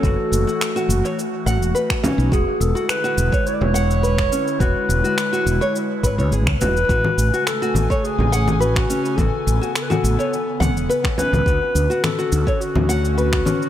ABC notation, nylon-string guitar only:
X:1
M:4/4
L:1/16
Q:1/4=105
K:Emix
V:1 name="Nylon-string guitar"
F3 F z F2 c z2 f2 B z C2 | F3 F z F2 c z2 f2 B z C2 | F3 F z F2 c z2 B c G z F z | F3 F z F2 c z2 f2 B z C2 |
F3 F z F2 c z2 f2 B z C2 | F3 F z F2 c z2 f2 B z C2 |]